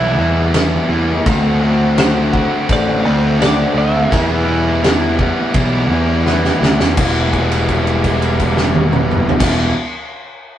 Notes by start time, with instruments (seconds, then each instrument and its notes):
Already playing: picked electric bass B1, overdriven electric guitar E2 B2 E3 G3 B3 E4, clean electric guitar E5
0.18 picked electric bass E2, overdriven electric guitar E3 G3 B3 E4
0.54 overdriven electric guitar E3 G3 B3 E4, snare, crash
0.89 picked electric bass E2, overdriven electric guitar E3 G3 B3 E4
1.25 picked electric bass D2, overdriven electric guitar D3 A3 C4 F#4, kick, crash
1.61 overdriven electric guitar A3 C4 F#4
1.96 overdriven electric guitar D3 A3 C4 F#4, clean electric guitar C5, snare, crash
2.33 overdriven electric guitar A3 C4 F#4, kick
2.68 picked electric bass A1, overdriven electric guitar D3 A3 C4 F#4, kick, crash
2.73 clean electric guitar D5
3.03 picked electric bass D2, overdriven electric guitar A3 C4 F#4
3.39 overdriven electric guitar D3 A3 C4 F#4, clean electric guitar D5, snare, crash
3.74 picked electric bass D2, overdriven electric guitar A3 C4 F#4
3.78 clean electric guitar E5
4.09 overdriven electric guitar E2 B2 E3 G3 B3 E4, picked electric bass E2, kick
4.13 crash
4.45 overdriven electric guitar E3 G3 B3 E4
4.81 overdriven electric guitar E3 G3 B3 E4, snare, crash
5.17 overdriven electric guitar E3 G3 B3 E4, kick
5.53 picked electric bass B1, overdriven electric guitar E2 B2 E3 G3 B3 E4, kick, crash
5.89 picked electric bass E2, overdriven electric guitar E3 G3 B3 E4
6.25 overdriven electric guitar E3 G3 B3 E4, snare
6.44 snare
6.60 picked electric bass D2, overdriven electric guitar E3 G3 B3 E4, snare
6.79 picked electric bass E2, snare
6.94 picked electric bass E1, overdriven electric guitar E2 B2 E3 G3 B3 E4, kick, crash
7.33 kick, crash
7.52 crash
7.69 kick, crash
7.87 crash
8.04 kick, crash
8.22 crash
8.40 kick, crash
8.57 snare
8.75 high tom
8.93 mid tom
9.11 mid tom
9.29 floor tom
9.39 picked electric bass E1, overdriven electric guitar E2 B2 E3 G3 B3 E4, kick, snare, crash